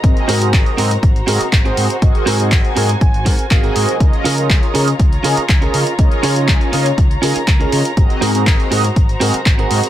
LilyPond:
<<
  \new Staff \with { instrumentName = "Violin section" } { \time 4/4 \key des \major \tempo 4 = 121 << { bes''1 | aes''1 | bes''1~ | bes''1~ |
bes''1 | } \\ { <ges' c''>1~ | <ges' c''>1 | <f' des''>1~ | <f' des''>1 |
<ges' c''>1 | } >> }
  \new Staff \with { instrumentName = "Analog polysynth" } { \time 4/4 \key des \major <c' ges' aes' bes' ees''>8. <c' ges' aes' bes' ees''>8. <c' ges' aes' bes' ees''>16 r8. <c' ges' aes' bes' ees''>16 r8 <c' ges' aes' bes' ees''>8 r16 | <c' ges' aes' bes' ees''>8. <c' ges' aes' bes' ees''>8. <c' ges' aes' bes' ees''>16 r4 r16 <c' ges' aes' bes' ees''>4 | <des' bes' ees''>8. <des' f' aes' bes' ees''>8. <des' f' aes' bes' ees''>16 r8. <des' f' aes' bes' ees''>16 r8 <des' f' aes' bes' ees''>8 r16 | <des' f' aes' bes' ees''>8. <des' f' aes' bes' ees''>8. <des' f' aes' bes' ees''>16 r8. <des' f' aes' bes' ees''>16 r8 <des' f' aes' bes' ees''>8 r16 |
<c' ges' aes' bes' ees''>8. <c' ges' aes' bes' ees''>8. <c' ges' aes' bes' ees''>16 r8. <c' ges' aes' bes' ees''>16 r8 <c' ges' aes' bes' ees''>8 r16 | }
  \new Staff \with { instrumentName = "Clean electric guitar" } { \time 4/4 \key des \major << { r1 | r4. bes''8 aes''8 ges''8 f''8 ees''8 | r1 | r1 |
r1 | } \\ { r8 <c' ges' aes' bes'>8 r8 <c' ges' aes' bes'>16 r8. <c' ges' aes' bes'>8 r16 <c' ges' aes' c''>8. | r8 <c' ges' aes' bes'>8 r8 <c' ges' aes' bes'>16 r8. <c' ges' aes' bes'>8 r16 <c' ges' aes' bes'>8. | r8 <des' f' aes' bes'>8 r8 <des' f' aes' bes'>16 r8. <des' f' aes' bes'>8 r16 <des' f' aes' bes'>8. | r8 <des' f' aes' des''>8 r8 <des' f' aes' bes'>16 r8. <des' f' aes' bes'>8 r16 <des' f' aes' bes'>8. |
r8 <c' ges' aes' bes'>8 r8 <c' ges' aes' bes'>16 r8. <c' ges' aes' bes'>8 r16 <c' ges' aes' bes'>8. | } >> }
  \new Staff \with { instrumentName = "Fingered electric bass" } { \clef bass \time 4/4 \key des \major aes,,8 aes,8 aes,,8 aes,8 aes,,8 aes,8 aes,,8 aes,8 | aes,,8 aes,8 aes,,8 aes,8 aes,,8 aes,8 aes,,8 aes,8 | des,8 des8 des,8 des8 des,8 des8 des,8 des8 | des,8 des8 des,8 des8 des,8 des8 des,8 des8 |
aes,,8 aes,8 aes,,8 aes,8 aes,,8 aes,8 aes,,8 aes,8 | }
  \new DrumStaff \with { instrumentName = "Drums" } \drummode { \time 4/4 <hh bd>16 hh16 hho16 hh16 <hc hh bd>16 hh16 hho16 hh16 <hh bd>16 hh16 hho16 hh16 <hc hh bd>16 hh16 hho16 hh16 | <hh bd>16 hh16 hho16 hh16 <hc hh bd>16 hh16 hho16 hh16 <hh bd>16 hh16 <hho bd>16 hh16 <hc hh bd>16 hh16 hho16 hh16 | <hh bd>16 hh16 hho16 hh16 <hc hh bd>16 hh16 hho16 hh16 <hh bd>16 hh16 hho16 hh16 <hc hh bd>16 hh16 hho16 hh16 | <hh bd>16 hh16 hho16 hh16 <hc hh bd>16 hh16 hho16 hh16 <hh bd>16 hh16 hho16 hh16 <hc hh bd>16 hh16 hho16 hh16 |
<hh bd>16 hh16 hho16 hh16 <hc hh bd>16 hh16 hho16 hh16 <hh bd>16 hh16 hho16 hh16 <hc hh bd>16 hh16 hho16 hh16 | }
>>